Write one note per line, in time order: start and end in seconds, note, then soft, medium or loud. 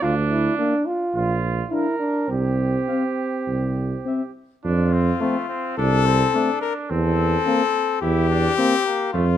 0.02 0.49 D2 medium
0.02 0.87 D4 medium
0.02 0.15 F4 medium
0.30 0.57 E4 medium
0.58 0.74 A#3 medium
0.58 0.87 D4 medium
0.58 0.76 F5 medium
0.85 1.43 F4 medium
1.15 1.62 A#1 medium
1.15 1.68 F4 medium
1.69 1.87 D4 soft
1.69 1.97 E4 medium
1.69 2.29 A#4 medium
1.69 1.87 F5 medium
1.99 2.30 D4 medium
2.28 2.78 C2 medium
2.28 4.34 C4 medium
2.28 4.32 G4 medium
2.88 3.05 C4 soft
2.88 3.04 F5 medium
3.47 3.96 C2 medium
4.06 4.22 C4 medium
4.06 4.23 E5 medium
4.65 5.12 F2 medium
4.65 4.94 D4 medium
4.65 5.74 F4 loud
4.93 5.23 C4 medium
5.20 5.36 A3 medium
5.20 5.48 A3 medium
5.20 5.38 C4 medium
5.49 5.77 C4 medium
5.77 6.25 C2 medium
5.77 6.07 D4 medium
5.77 6.60 A4 loud
6.06 6.37 C4 medium
6.34 6.50 A3 medium
6.34 6.50 C4 medium
6.34 6.92 D4 medium
6.61 6.74 A#4 loud
6.90 7.37 E2 loud
6.90 8.01 C4 medium
6.90 8.00 A4 loud
7.46 7.62 A#3 medium
7.46 7.63 C4 medium
8.02 8.48 E2 loud
8.02 8.29 E4 medium
8.02 9.11 G4 loud
8.30 8.56 D4 medium
8.56 8.74 A#3 medium
8.56 8.87 C4 medium
8.56 8.75 C4 medium
8.85 9.13 A#3 medium
9.13 9.37 F2 medium
9.13 9.26 A3 medium
9.13 9.37 F4 loud